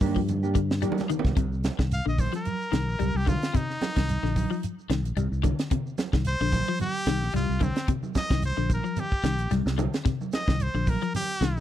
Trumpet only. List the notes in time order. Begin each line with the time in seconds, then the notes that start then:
1.93 F5
2.08 D#5
2.20 C5
2.36 A#4
3.17 G4
3.28 F4
3.56 D#4
6.28 C5
6.81 G4
7.36 F4
7.64 C4
8.17 D#5
8.45 C5
8.74 A#4
9.00 G4
10.34 D#5
10.62 C5
10.89 A#4
11.16 G4